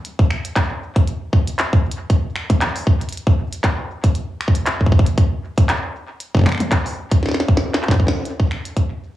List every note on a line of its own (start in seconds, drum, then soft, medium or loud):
0.05 closed hi-hat medium
0.19 kick loud
0.31 finger snap medium
0.45 closed hi-hat medium
0.56 kick loud
0.56 clap loud
0.56 closed hi-hat soft
0.96 kick loud
0.96 closed hi-hat medium
1.08 closed hi-hat soft
1.33 kick loud
1.47 closed hi-hat medium
1.59 clap loud
1.59 closed hi-hat medium
1.73 kick loud
1.92 closed hi-hat medium
2.10 kick medium
2.10 closed hi-hat medium
2.36 finger snap medium
2.50 kick loud
2.50 closed hi-hat medium
2.50 high tom medium
2.61 clap loud
2.61 closed hi-hat soft
2.76 open hi-hat medium
2.87 kick loud
3.01 closed hi-hat soft
3.09 closed hi-hat soft
3.13 closed hi-hat soft
3.17 closed hi-hat soft
3.27 kick loud
3.53 closed hi-hat medium
3.64 kick loud
3.64 clap loud
3.64 closed hi-hat medium
4.04 kick loud
4.04 closed hi-hat medium
4.15 closed hi-hat medium
4.41 finger snap medium
4.48 kick loud
4.55 closed hi-hat medium
4.66 clap loud
4.66 closed hi-hat medium
4.81 kick soft
4.86 kick medium
4.92 kick medium
4.99 kick loud
5.06 closed hi-hat medium
5.18 kick loud
5.18 closed hi-hat soft
5.58 kick loud
5.58 closed hi-hat medium
5.69 clap loud
5.69 closed hi-hat medium
6.20 closed hi-hat medium
6.35 kick loud
6.37 kick medium
6.39 kick medium
6.41 kick medium
6.44 finger snap medium
6.44 kick soft
6.44 clap medium
6.44 high tom medium
6.49 finger snap medium
6.52 finger snap medium
6.55 finger snap soft
6.58 finger snap soft
6.58 closed hi-hat medium
6.58 high tom medium
6.71 kick loud
6.71 clap loud
6.71 closed hi-hat medium
6.86 open hi-hat medium
7.11 kick loud
7.11 closed hi-hat medium
7.23 snare soft
7.26 snare soft
7.29 snare soft
7.31 snare soft
7.34 snare medium
7.40 snare medium
7.48 kick loud
7.57 snare medium
7.74 snare medium
7.74 clap medium
7.83 clap medium
7.88 kick loud
7.88 snare loud
7.88 clap medium
7.94 kick medium
8.00 kick medium
8.07 kick medium
8.07 snare loud
8.25 closed hi-hat medium
8.40 kick loud
8.51 finger snap medium
8.65 closed hi-hat medium
8.77 kick medium
8.77 closed hi-hat medium